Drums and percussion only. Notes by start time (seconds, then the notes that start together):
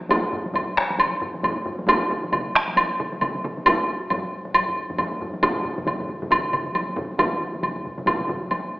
0.01 taiko high
0.09 taiko, taiko high, high woodblock
0.33 taiko low-mid
0.46 taiko high
0.54 taiko low-mid, taiko high, high woodblock
0.77 taiko rim
0.90 taiko high
0.99 taiko high, high woodblock
1.22 taiko low-mid
1.34 taiko high
1.43 taiko low-mid, taiko high, high woodblock
1.57 taiko high
1.66 taiko low-mid
1.79 taiko high
1.88 taiko, taiko high, high woodblock
2.11 taiko mid
2.24 taiko high
2.32 taiko mid, taiko high, high woodblock
2.55 taiko rim
2.68 taiko high
2.77 taiko, taiko high, high woodblock
3.00 taiko mid
3.12 taiko high
3.21 taiko, taiko mid, taiko high, high woodblock
3.35 taiko high
3.44 taiko mid
3.57 taiko high
3.66 taiko, taiko low-mid, taiko high, high woodblock
4.10 taiko low-mid, taiko high, high woodblock
4.45 taiko high
4.54 taiko low-mid, taiko high, high woodblock
4.68 taiko low-mid
4.77 taiko low-mid
4.90 taiko low-mid, taiko high
4.98 taiko low-mid, taiko high, high woodblock
5.12 taiko high
5.21 taiko low-mid
5.34 taiko high
5.43 taiko, taiko low-mid, taiko mid, taiko high, high woodblock
5.56 taiko low-mid, taiko mid
5.65 taiko low-mid, taiko mid
5.78 taiko low-mid, taiko mid, taiko high
5.87 taiko low-mid, taiko mid, taiko high, high woodblock
6.00 taiko low-mid, taiko mid
6.09 taiko low-mid, taiko mid
6.22 taiko low-mid, taiko mid, taiko high
6.31 taiko, taiko low-mid, taiko mid, taiko high, high woodblock
6.53 taiko low-mid, taiko mid, high woodblock
6.66 taiko high
6.75 taiko, taiko high, high woodblock
6.88 taiko high
6.97 taiko low-mid, taiko mid
7.11 taiko high
7.19 taiko, taiko low-mid, taiko mid, taiko high, high woodblock
7.41 taiko high
7.54 taiko low-mid, taiko mid, taiko high
7.63 taiko low-mid, taiko mid, taiko high, high woodblock
7.76 taiko low-mid, taiko mid
7.85 taiko low-mid, taiko mid, taiko high
7.98 taiko low-mid, taiko mid, taiko high
8.06 taiko, taiko low-mid, taiko mid, taiko high, high woodblock
8.20 taiko low-mid, taiko mid
8.29 taiko low-mid, taiko mid, taiko high
8.42 taiko high
8.51 taiko high, high woodblock